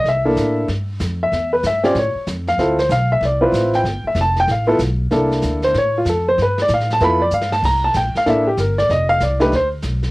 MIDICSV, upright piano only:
0, 0, Header, 1, 2, 480
1, 0, Start_track
1, 0, Key_signature, 0, "major"
1, 0, Tempo, 315789
1, 79, Time_signature, 4, 2, 24, 8
1, 15364, End_track
2, 0, Start_track
2, 0, Title_t, "Upright piano"
2, 0, Program_c, 0, 0
2, 129, Note_on_c, 0, 76, 90
2, 381, Note_on_c, 0, 58, 66
2, 386, Note_on_c, 0, 62, 55
2, 391, Note_on_c, 0, 64, 53
2, 404, Note_on_c, 0, 69, 68
2, 1004, Note_off_c, 0, 58, 0
2, 1006, Note_off_c, 0, 62, 0
2, 1006, Note_off_c, 0, 76, 0
2, 1009, Note_off_c, 0, 64, 0
2, 1016, Note_off_c, 0, 69, 0
2, 1869, Note_on_c, 0, 76, 83
2, 2298, Note_off_c, 0, 76, 0
2, 2325, Note_on_c, 0, 71, 71
2, 2487, Note_off_c, 0, 71, 0
2, 2532, Note_on_c, 0, 76, 86
2, 2788, Note_on_c, 0, 60, 74
2, 2793, Note_on_c, 0, 61, 68
2, 2802, Note_on_c, 0, 65, 59
2, 2802, Note_on_c, 0, 67, 77
2, 2807, Note_off_c, 0, 76, 0
2, 2812, Note_on_c, 0, 74, 81
2, 2946, Note_off_c, 0, 60, 0
2, 2949, Note_off_c, 0, 61, 0
2, 2953, Note_off_c, 0, 65, 0
2, 2954, Note_off_c, 0, 67, 0
2, 2971, Note_off_c, 0, 74, 0
2, 3026, Note_on_c, 0, 73, 76
2, 3445, Note_off_c, 0, 73, 0
2, 3776, Note_on_c, 0, 77, 91
2, 3934, Note_on_c, 0, 60, 60
2, 3940, Note_on_c, 0, 64, 56
2, 3949, Note_on_c, 0, 65, 54
2, 3958, Note_on_c, 0, 69, 64
2, 4206, Note_off_c, 0, 60, 0
2, 4209, Note_off_c, 0, 64, 0
2, 4212, Note_off_c, 0, 77, 0
2, 4214, Note_off_c, 0, 65, 0
2, 4218, Note_off_c, 0, 69, 0
2, 4242, Note_on_c, 0, 72, 75
2, 4407, Note_off_c, 0, 72, 0
2, 4436, Note_on_c, 0, 77, 89
2, 4719, Note_off_c, 0, 77, 0
2, 4744, Note_on_c, 0, 76, 87
2, 4898, Note_off_c, 0, 76, 0
2, 4944, Note_on_c, 0, 74, 75
2, 5182, Note_on_c, 0, 60, 75
2, 5185, Note_on_c, 0, 64, 65
2, 5195, Note_on_c, 0, 65, 71
2, 5200, Note_on_c, 0, 71, 76
2, 5364, Note_off_c, 0, 74, 0
2, 5702, Note_on_c, 0, 79, 90
2, 5808, Note_off_c, 0, 60, 0
2, 5809, Note_off_c, 0, 64, 0
2, 5814, Note_off_c, 0, 65, 0
2, 5816, Note_off_c, 0, 71, 0
2, 6135, Note_off_c, 0, 79, 0
2, 6190, Note_on_c, 0, 76, 77
2, 6341, Note_off_c, 0, 76, 0
2, 6396, Note_on_c, 0, 81, 93
2, 6660, Note_off_c, 0, 81, 0
2, 6685, Note_on_c, 0, 79, 100
2, 6829, Note_off_c, 0, 79, 0
2, 6859, Note_on_c, 0, 77, 74
2, 7097, Note_on_c, 0, 59, 73
2, 7105, Note_on_c, 0, 64, 73
2, 7110, Note_on_c, 0, 65, 72
2, 7118, Note_on_c, 0, 69, 82
2, 7262, Note_off_c, 0, 59, 0
2, 7266, Note_off_c, 0, 64, 0
2, 7269, Note_off_c, 0, 65, 0
2, 7272, Note_off_c, 0, 69, 0
2, 7281, Note_off_c, 0, 77, 0
2, 7762, Note_on_c, 0, 58, 60
2, 7770, Note_on_c, 0, 62, 53
2, 7783, Note_on_c, 0, 64, 54
2, 7787, Note_on_c, 0, 69, 71
2, 8576, Note_on_c, 0, 72, 87
2, 8724, Note_off_c, 0, 58, 0
2, 8728, Note_off_c, 0, 62, 0
2, 8733, Note_off_c, 0, 72, 0
2, 8734, Note_off_c, 0, 64, 0
2, 8736, Note_off_c, 0, 69, 0
2, 8786, Note_on_c, 0, 73, 94
2, 9054, Note_off_c, 0, 73, 0
2, 9086, Note_on_c, 0, 65, 69
2, 9228, Note_off_c, 0, 65, 0
2, 9261, Note_on_c, 0, 69, 71
2, 9530, Note_off_c, 0, 69, 0
2, 9552, Note_on_c, 0, 72, 91
2, 9701, Note_off_c, 0, 72, 0
2, 9762, Note_on_c, 0, 71, 78
2, 10021, Note_off_c, 0, 71, 0
2, 10060, Note_on_c, 0, 74, 95
2, 10195, Note_off_c, 0, 74, 0
2, 10242, Note_on_c, 0, 77, 83
2, 10501, Note_off_c, 0, 77, 0
2, 10532, Note_on_c, 0, 81, 96
2, 10656, Note_on_c, 0, 59, 62
2, 10658, Note_on_c, 0, 64, 64
2, 10670, Note_off_c, 0, 81, 0
2, 10670, Note_on_c, 0, 65, 62
2, 10674, Note_on_c, 0, 69, 75
2, 10699, Note_on_c, 0, 83, 106
2, 10925, Note_off_c, 0, 59, 0
2, 10926, Note_off_c, 0, 64, 0
2, 10932, Note_off_c, 0, 65, 0
2, 10934, Note_off_c, 0, 69, 0
2, 10969, Note_off_c, 0, 83, 0
2, 10969, Note_on_c, 0, 74, 87
2, 11128, Note_off_c, 0, 74, 0
2, 11156, Note_on_c, 0, 77, 79
2, 11436, Note_off_c, 0, 77, 0
2, 11437, Note_on_c, 0, 81, 95
2, 11602, Note_off_c, 0, 81, 0
2, 11632, Note_on_c, 0, 82, 92
2, 11914, Note_off_c, 0, 82, 0
2, 11923, Note_on_c, 0, 81, 91
2, 12084, Note_off_c, 0, 81, 0
2, 12109, Note_on_c, 0, 79, 83
2, 12392, Note_off_c, 0, 79, 0
2, 12425, Note_on_c, 0, 77, 90
2, 12554, Note_on_c, 0, 58, 67
2, 12558, Note_on_c, 0, 62, 59
2, 12569, Note_on_c, 0, 64, 59
2, 12571, Note_on_c, 0, 69, 65
2, 12575, Note_off_c, 0, 77, 0
2, 12608, Note_on_c, 0, 76, 80
2, 12832, Note_off_c, 0, 58, 0
2, 12834, Note_off_c, 0, 62, 0
2, 12840, Note_off_c, 0, 64, 0
2, 12841, Note_off_c, 0, 69, 0
2, 12881, Note_off_c, 0, 76, 0
2, 12882, Note_on_c, 0, 67, 72
2, 13043, Note_off_c, 0, 67, 0
2, 13063, Note_on_c, 0, 70, 63
2, 13349, Note_off_c, 0, 70, 0
2, 13350, Note_on_c, 0, 74, 94
2, 13517, Note_off_c, 0, 74, 0
2, 13542, Note_on_c, 0, 75, 84
2, 13820, Note_on_c, 0, 77, 111
2, 13828, Note_off_c, 0, 75, 0
2, 13991, Note_off_c, 0, 77, 0
2, 14024, Note_on_c, 0, 74, 75
2, 14282, Note_on_c, 0, 57, 73
2, 14290, Note_on_c, 0, 62, 67
2, 14295, Note_on_c, 0, 63, 63
2, 14306, Note_on_c, 0, 67, 74
2, 14309, Note_off_c, 0, 74, 0
2, 14309, Note_on_c, 0, 71, 91
2, 14450, Note_off_c, 0, 57, 0
2, 14454, Note_off_c, 0, 62, 0
2, 14456, Note_off_c, 0, 63, 0
2, 14462, Note_off_c, 0, 67, 0
2, 14476, Note_off_c, 0, 71, 0
2, 14519, Note_on_c, 0, 72, 91
2, 14690, Note_off_c, 0, 72, 0
2, 15364, End_track
0, 0, End_of_file